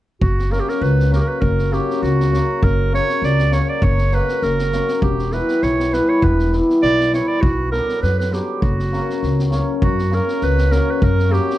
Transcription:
0.21 upright bass F#1, clarinet F#4, kick
0.39 snare
0.50 hammered dulcimer C#3 F#3 A#3 C#4, clarinet A#4, snare
0.59 clarinet G4
0.69 clarinet A#4, snare
0.81 upright bass C#2, clarinet B4, snare
0.99 snare
1.11 hammered dulcimer C#3 F#3 A#3 C#4, clarinet A#4, snare
1.15 clarinet G4 A#4
1.28 clarinet B4
1.41 upright bass F#1, clarinet A#4, kick
1.58 snare
1.71 hammered dulcimer C#3 F#3 A#3 C#4, clarinet G4, snare
1.90 snare
2.02 upright bass C#2, clarinet F#4, snare
2.20 snare
2.32 hammered dulcimer C#3 F#3 A#3 C#4, snare
2.62 upright bass F#1, clarinet A#4, kick
2.92 hammered dulcimer C#3 F#3 A#3 C#4, clarinet C#5, snare
3.09 snare
3.22 upright bass C#2, clarinet D5, snare
3.38 snare
3.51 hammered dulcimer C#3 F#3 A#3 C#4, clarinet C#5, snare
3.69 clarinet D5
3.82 upright bass F#1, clarinet C#5, kick
3.98 snare
4.11 hammered dulcimer C#3 F#3 A#3 C#4, clarinet B4, snare
4.28 snare
4.42 upright bass F#1, clarinet A#4, snare
4.58 snare
4.72 hammered dulcimer C#3 F#3 A#3 C#4, snare
4.88 snare
5.02 upright bass E1, clarinet G4, kick
5.18 snare
5.31 hammered dulcimer E3 G3 B3 E4, clarinet B4, snare
5.48 snare
5.62 upright bass B1, clarinet C#5, snare
5.79 snare
5.92 hammered dulcimer E3 G3 B3 E4, clarinet B4, snare
6.09 clarinet C#5
6.22 upright bass E1, clarinet B4, kick
6.39 snare
6.52 hammered dulcimer E3 G3 B3 E4, snare
6.70 snare
6.82 upright bass B1, clarinet D5, snare
7.00 snare
7.12 hammered dulcimer E3 G3 B3 E4, clarinet C#5, snare
7.28 clarinet D5
7.41 upright bass B1, clarinet F#4, kick
7.71 hammered dulcimer D3 F#3 B3 D4, clarinet A#4, snare
7.89 snare
8.02 upright bass F#2, clarinet B4, snare
8.19 clarinet B4, snare
8.31 hammered dulcimer D3 F#3 B3 D4, clarinet G4, snare
8.62 upright bass F#1, clarinet F#4, kick
8.79 snare
8.92 hammered dulcimer C#3 F#3 A#3 C#4, snare
9.10 snare
9.23 upright bass C#2, snare
9.39 snare
9.50 hammered dulcimer C#3 F#3 A#3 C#4, snare
9.82 upright bass F#2, clarinet F#4, kick
9.98 snare
10.11 hammered dulcimer C#3 F#3 A#3 C#4, clarinet A#4, snare
10.28 snare
10.41 upright bass C#2, clarinet B4, snare
10.58 snare
10.70 hammered dulcimer C#3 F#3 A#3 C#4, clarinet A#4, snare
10.91 clarinet B4
11.02 upright bass F#2, clarinet A#4, kick
11.19 snare
11.29 hammered dulcimer C#3 F#3 A#3 C#4, clarinet G4
11.33 snare
11.50 snare

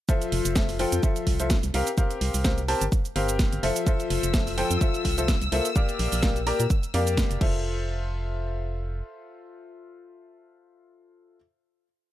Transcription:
0.09 upright piano F3 F4 A4 C5 E5, kick, shaker
0.22 closed hi-hat, shaker
0.32 fm bass F1, open hi-hat
0.45 fm bass F1, closed hi-hat, shaker
0.56 upright piano F3 F4 A4 C5 E5, kick, snare, shaker
0.69 open hi-hat, shaker
0.79 upright piano F3 F4 A4 C5 G5, open hi-hat
0.92 fm bass F2, closed hi-hat, shaker
1.03 upright piano F3 F4 A4 C5 E5, kick, shaker
1.16 closed hi-hat, shaker
1.27 fm bass C2, kick, open hi-hat
1.40 upright piano F3 F4 A4 C5 E5, closed hi-hat, shaker
1.50 kick, snare, shaker
1.63 fm bass C2, closed hi-hat, shaker
1.74 fm bass C2, upright piano C4 G4 A#4 C5 F5, open hi-hat
1.87 closed hi-hat, shaker
1.98 upright piano C4 G4 A#4 C5 F5, kick, shaker
2.11 closed hi-hat, shaker
2.21 fm bass C2, open hi-hat
2.34 fm bass C2, open hi-hat, shaker
2.44 upright piano C4 G4 A#4 C5 F5, kick, snare, shaker
2.58 closed hi-hat, shaker
2.68 upright piano C4 G4 A#4 C5 A5, open hi-hat
2.81 fm bass G1, closed hi-hat, shaker
2.92 kick, shaker
3.05 closed hi-hat, shaker
3.16 fm bass G1, upright piano C4 G4 A#4 C5 F5, open hi-hat
3.29 closed hi-hat, shaker
3.39 kick, snare, shaker
3.53 fm bass G1, closed hi-hat, shaker
3.63 fm bass F1, upright piano F3 F4 A4 C5 E5, open hi-hat
3.76 closed hi-hat, shaker
3.87 upright piano F3 F4 A4 C5 E5, violin section E6, kick, shaker
4.00 closed hi-hat, shaker
4.10 fm bass F1, open hi-hat
4.23 fm bass F1, closed hi-hat, shaker
4.34 upright piano F3 F4 A4 C5 E5, kick, snare, shaker
4.47 open hi-hat, shaker
4.57 upright piano F3 F4 A4 C5 G5, open hi-hat
4.71 fm bass F2, closed hi-hat, shaker
4.81 upright piano F3 F4 A4 C5 E5, kick, shaker
4.94 closed hi-hat, shaker
5.05 fm bass C2, kick, open hi-hat
5.18 upright piano F3 F4 A4 C5 E5, closed hi-hat, shaker
5.28 kick, snare, shaker
5.41 fm bass C2, closed hi-hat, shaker
5.52 fm bass C2, upright piano A#3 F4 A4 C5 E5, open hi-hat
5.65 closed hi-hat, shaker
5.76 upright piano A#3 G4 A#4 D5 F5, kick, shaker
5.89 closed hi-hat, shaker
5.99 fm bass A#1, open hi-hat
6.12 fm bass A#1, open hi-hat, shaker
6.23 upright piano A#3 G4 A#4 D5 F5, kick, snare, shaker
6.36 closed hi-hat, shaker
6.47 upright piano A#3 G4 A#4 D5 A#5, open hi-hat
6.60 fm bass A#2, closed hi-hat, shaker
6.70 kick, shaker
6.83 closed hi-hat, shaker
6.94 fm bass F2, upright piano A#3 G4 A#4 D5 F5, open hi-hat
7.07 closed hi-hat, shaker
7.17 kick, snare, shaker
7.31 fm bass F1, closed hi-hat, shaker
7.41 fm bass F1, upright piano F4 A4 C5 E5, kick, crash

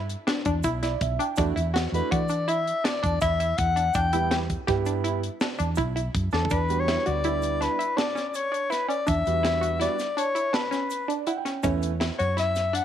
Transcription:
Already playing: fretless electric bass G2, synth arpeggio sound E4
0.10 closed hi-hat
0.27 synth arpeggio sound D4, snare, closed hi-hat
0.45 fretless electric bass E2, synth arpeggio sound D4, kick, closed hi-hat
0.63 fretless electric bass B1, synth arpeggio sound E4, kick, closed hi-hat, shaker
0.82 synth arpeggio sound E4, grand piano D5, snare, closed hi-hat
1.01 fretless electric bass B1, grand piano E5, kick, closed hi-hat
1.19 synth arpeggio sound D4, grand piano G5, closed hi-hat
1.36 fretless electric bass E2, grand piano A3 D4 E4 F#4, synth arpeggio sound D4, kick, closed hi-hat, shaker
1.56 fretless electric bass E2, synth arpeggio sound E4, closed hi-hat
1.74 synth arpeggio sound F#4, snare, closed hi-hat
1.92 fretless electric bass E2, grand piano A3 D4 E4 F#4, soprano saxophone B4, closed hi-hat
2.11 fretless electric bass E3, synth arpeggio sound F#4, soprano saxophone D5, kick, closed hi-hat
2.28 synth arpeggio sound D4, closed hi-hat, shaker
2.48 synth arpeggio sound E4, soprano saxophone E5, closed hi-hat
2.67 closed hi-hat
2.84 synth arpeggio sound D4, soprano saxophone D5, snare, closed hi-hat
3.03 fretless electric bass E2, synth arpeggio sound D4, kick, closed hi-hat
3.21 fretless electric bass E2, synth arpeggio sound E4, soprano saxophone E5, kick, closed hi-hat, shaker
3.40 synth arpeggio sound E4, closed hi-hat
3.58 fretless electric bass E2, soprano saxophone F#5, kick, closed hi-hat
3.76 synth arpeggio sound D4, closed hi-hat
3.94 fretless electric bass E2, synth arpeggio sound D4, soprano saxophone G5, kick, closed hi-hat, shaker
4.13 grand piano G3 B3 E4 G4, synth arpeggio sound E4, closed hi-hat
4.31 synth arpeggio sound G4, snare, closed hi-hat
4.50 kick, closed hi-hat
4.67 fretless electric bass G2, grand piano G3 B3 E4 G4, synth arpeggio sound G4, kick, snare, closed hi-hat
4.86 synth arpeggio sound D4, closed hi-hat, shaker
5.04 synth arpeggio sound E4, closed hi-hat
5.23 closed hi-hat
5.40 synth arpeggio sound D4, snare, closed hi-hat, shaker
5.58 fretless electric bass E2, synth arpeggio sound D4, closed hi-hat, shaker
5.76 fretless electric bass B1, synth arpeggio sound E4, kick, closed hi-hat, shaker
5.96 synth arpeggio sound E4, closed hi-hat
6.15 fretless electric bass F#2, kick, closed hi-hat
6.31 fretless electric bass E2, synth arpeggio sound D4, soprano saxophone A4, snare, shaker
6.45 floor tom
6.50 fretless electric bass E2, synth arpeggio sound D4, soprano saxophone B4, kick, closed hi-hat, shaker
6.68 grand piano G3 B3 D4 F#4, closed hi-hat, shaker
6.80 soprano saxophone C#5
6.88 synth arpeggio sound E4, snare, closed hi-hat
7.06 fretless electric bass D2, synth arpeggio sound F#4, soprano saxophone D5, closed hi-hat
7.24 grand piano G3 B3 D4 E4, synth arpeggio sound E4, closed hi-hat
7.42 closed hi-hat, shaker
7.61 synth arpeggio sound D4, soprano saxophone B4, snare, closed hi-hat
7.79 synth arpeggio sound E4, closed hi-hat
7.97 synth arpeggio sound D4, soprano saxophone D5, snare, closed hi-hat
8.15 synth arpeggio sound C#4, snare, closed hi-hat, shaker
8.28 soprano saxophone D5
8.34 soprano saxophone C#5, closed hi-hat, shaker
8.52 synth arpeggio sound D4, closed hi-hat
8.70 synth arpeggio sound E4, soprano saxophone B4, snare, closed hi-hat, shaker
8.88 synth arpeggio sound C#4, soprano saxophone D5, closed hi-hat
9.07 fretless electric bass E2, synth arpeggio sound D4, soprano saxophone E5, kick, closed hi-hat, shaker
9.25 fretless electric bass E2, grand piano G3 B3 D4 F#4, closed hi-hat, shaker
9.43 synth arpeggio sound E4, snare, closed hi-hat
9.61 synth arpeggio sound F#4, closed hi-hat
9.80 grand piano G3 B3 D4 F#4, synth arpeggio sound E4, soprano saxophone D5, snare, closed hi-hat
9.99 snare, closed hi-hat, shaker
10.17 synth arpeggio sound D4, soprano saxophone C#5, closed hi-hat
10.35 synth arpeggio sound E4, closed hi-hat
10.53 synth arpeggio sound D4, soprano saxophone B4, snare, closed hi-hat
10.71 synth arpeggio sound C#4, snare, closed hi-hat, shaker
10.90 closed hi-hat, shaker
11.08 synth arpeggio sound D4, grand piano D5, closed hi-hat
11.27 synth arpeggio sound E4, grand piano F#5, closed hi-hat, shaker
11.37 grand piano G5
11.45 synth arpeggio sound C#4, snare, closed hi-hat
11.63 fretless electric bass E2, grand piano A3 B3 C#4 E4, synth arpeggio sound C#4, kick, closed hi-hat, shaker
11.82 closed hi-hat, shaker
12.00 synth arpeggio sound E4, snare, closed hi-hat
12.19 fretless electric bass F#2, synth arpeggio sound F#4, soprano saxophone C#5, closed hi-hat
12.37 synth arpeggio sound E4, soprano saxophone E5, snare, closed hi-hat
12.55 snare, closed hi-hat, shaker
12.73 synth arpeggio sound D4, soprano saxophone F#5, closed hi-hat

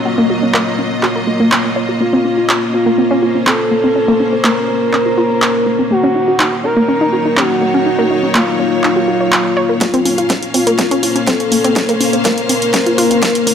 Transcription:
Already playing: string section F#3 A#3 F4 D#5, ambient pad A#3 C#4 C#5
0.05 ambient pad F4, synth arpeggio sound F#4
0.18 synth arpeggio sound A#3
0.30 synth arpeggio sound F#4
0.42 synth arpeggio sound C#4
0.54 synth arpeggio sound A#3, clap
0.79 synth arpeggio sound C#4
1.03 synth arpeggio sound F#4, clap
1.16 synth arpeggio sound A#4
1.27 synth arpeggio sound A#3
1.40 synth arpeggio sound A#3
1.52 synth arpeggio sound C#4, clap
1.76 synth arpeggio sound C#5
1.89 synth arpeggio sound F#4
2.00 synth arpeggio sound A#3, ambient pad C#4 F4 C5, string section C#4, analog synth lead F4
2.13 synth arpeggio sound C4
2.25 synth arpeggio sound C#4
2.38 synth arpeggio sound F4
2.49 synth arpeggio sound C#4, clap
2.74 synth arpeggio sound C4, analog synth lead F4
2.86 synth arpeggio sound A#3, string section C5
2.98 synth arpeggio sound C4
3.11 synth arpeggio sound C#4
3.22 synth arpeggio sound F4
3.35 synth arpeggio sound C#4
3.47 synth arpeggio sound C4, analog synth lead A4, clap
3.71 synth arpeggio sound A#3
3.84 synth arpeggio sound C4
3.96 synth arpeggio sound C#4, ambient pad D#4
4.08 synth arpeggio sound A#3
4.20 synth arpeggio sound C#4
4.33 synth arpeggio sound C4
4.44 synth arpeggio sound A#3, analog synth lead A#4, clap
4.69 synth arpeggio sound C4
4.93 synth arpeggio sound C#4, clap
5.06 synth arpeggio sound F4
5.18 synth arpeggio sound F4
5.30 synth arpeggio sound C4
5.42 clap
5.66 synth arpeggio sound A#3
5.79 synth arpeggio sound C4
5.91 string section D#3, ambient pad F#3 A#3 D#4 C#5, synth arpeggio sound A#3, analog synth lead F#4
6.03 synth arpeggio sound C#4
6.10 string section D#4
6.15 synth arpeggio sound D#4
6.28 synth arpeggio sound F#4
6.40 synth arpeggio sound D#4, clap
6.64 synth arpeggio sound C#4, analog synth lead A#4
6.75 synth arpeggio sound A#3, string section C#5
6.88 synth arpeggio sound C#4
7.01 synth arpeggio sound D#4
7.13 synth arpeggio sound F#4
7.25 synth arpeggio sound D#4
7.37 synth arpeggio sound C#4, analog synth lead F#4, clap
7.62 synth arpeggio sound A#3
7.74 synth arpeggio sound C#4
7.86 synth arpeggio sound D#4
7.99 synth arpeggio sound A#3
8.10 synth arpeggio sound D#4
8.23 synth arpeggio sound C#4
8.35 synth arpeggio sound A#3, analog synth lead F4, clap
8.59 synth arpeggio sound C#4
8.84 synth arpeggio sound D#4, clap
8.96 synth arpeggio sound F#4
9.08 synth arpeggio sound F#4
9.21 synth arpeggio sound C#5
9.32 clap
9.57 synth arpeggio sound C#5
9.69 synth arpeggio sound A#4
9.81 ambient pad A#3 C#4 F4 C5, synth arpeggio sound A#3, string section C#4, analog synth lead F4, kick, snare, closed hi-hat
9.90 synth arpeggio sound C4, string section F5
9.94 string section A#3, closed hi-hat
10.05 synth arpeggio sound C#4, open hi-hat
10.18 synth arpeggio sound F4, closed hi-hat
10.30 synth arpeggio sound C#4, kick, snare, closed hi-hat
10.43 closed hi-hat
10.54 synth arpeggio sound C4, analog synth lead F4, open hi-hat
10.67 synth arpeggio sound A#3, closed hi-hat
10.79 synth arpeggio sound C4, kick, snare, closed hi-hat
10.91 synth arpeggio sound C#4, closed hi-hat
11.01 synth arpeggio sound F4, string section C5, open hi-hat
11.16 synth arpeggio sound C#4, closed hi-hat
11.27 synth arpeggio sound C4, analog synth lead A4, kick, snare, closed hi-hat
11.40 closed hi-hat
11.52 synth arpeggio sound A#3, open hi-hat
11.64 synth arpeggio sound C4, closed hi-hat
11.76 synth arpeggio sound C#4, ambient pad D#4, kick, snare, closed hi-hat
11.89 synth arpeggio sound A#3, closed hi-hat
12.00 synth arpeggio sound C#4, open hi-hat
12.13 synth arpeggio sound C4, closed hi-hat
12.25 synth arpeggio sound A#3, analog synth lead A#4, kick, snare, closed hi-hat
12.38 closed hi-hat
12.49 synth arpeggio sound C4, open hi-hat
12.62 closed hi-hat
12.74 synth arpeggio sound C#4, kick, snare, closed hi-hat
12.86 synth arpeggio sound F4, closed hi-hat
12.98 synth arpeggio sound F4, open hi-hat
13.11 synth arpeggio sound C4, closed hi-hat
13.22 kick, snare, closed hi-hat
13.35 closed hi-hat
13.47 synth arpeggio sound A#3, open hi-hat

